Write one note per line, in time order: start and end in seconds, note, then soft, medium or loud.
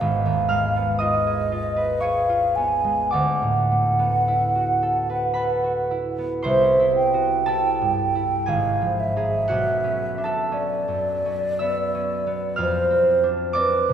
0.00 3.16 G#1 soft
0.00 0.75 B3 soft
0.00 1.75 B4 soft
0.00 1.01 F5 medium
0.26 3.16 D#2 soft
0.49 2.83 G#3 soft
0.49 3.16 F5 medium
0.49 3.16 F6 medium
0.76 2.56 B3 soft
0.99 1.51 F4 soft
0.99 3.16 D#5 soft
0.99 2.03 D#5 soft
0.99 3.16 D#6 medium
1.27 2.02 G#4 soft
1.52 2.28 F4 soft
1.76 5.08 B4 soft
2.00 3.17 G#4 soft
2.00 3.16 C#5 soft
2.00 2.57 F5 soft
2.00 3.92 C#6 medium
2.29 3.17 F4 soft
2.56 3.98 B3 soft
2.56 3.13 G#5 soft
2.84 3.17 G#3 soft
3.11 6.50 D2 soft
3.11 6.49 D5 soft
3.11 5.91 F#5 soft
3.11 6.49 D6 medium
3.42 6.50 A2 soft
3.72 6.50 A3 soft
3.99 6.17 B3 soft
4.28 5.90 E4 soft
4.55 5.63 F#4 soft
4.83 5.35 A4 soft
5.10 5.34 B4 soft
5.34 6.49 A4 soft
5.34 9.25 B4 soft
5.34 9.24 B5 medium
5.64 6.49 F#4 soft
5.91 6.79 E4 soft
6.18 10.08 B3 soft
6.43 8.54 C2 soft
6.43 8.53 C5 medium
6.43 6.93 E5 soft
6.43 8.53 C6 medium
6.80 7.47 E4 soft
6.96 8.50 G5 soft
7.14 7.72 F#4 soft
7.46 8.14 E4 soft
7.46 8.54 A4 medium
7.46 9.19 A5 medium
7.82 8.54 G2 soft
8.15 8.53 E4 soft
8.46 9.53 G#1 soft
8.46 9.16 G#4 soft
8.46 9.02 F5 medium
8.46 9.52 G#5 medium
8.82 9.54 F3 soft
9.00 10.55 E5 medium
9.16 9.54 D#4 soft
9.16 9.54 G#4 soft
9.48 12.64 B1 soft
9.48 12.64 F#4 soft
9.48 12.63 F#5 medium
9.84 10.51 C#4 soft
10.18 10.78 D4 soft
10.24 13.93 A4 soft
10.24 13.93 A5 medium
10.52 11.24 C#4 soft
10.52 12.61 D5 medium
10.88 12.64 F#2 soft
11.25 11.93 C#4 soft
11.59 12.25 B3 soft
11.59 13.93 E5 medium
11.59 13.26 E6 medium
11.95 12.50 C#4 soft
12.27 12.63 B3 soft
12.56 13.93 F2 soft
12.56 13.93 F5 medium
12.56 13.93 F6 medium
12.61 13.29 C5 medium
12.90 13.54 C4 soft
13.23 13.80 D4 soft
13.53 13.93 C4 soft
13.53 13.93 D5 medium
13.53 13.93 D6 medium
13.58 13.93 B4 soft
13.89 13.93 C3 soft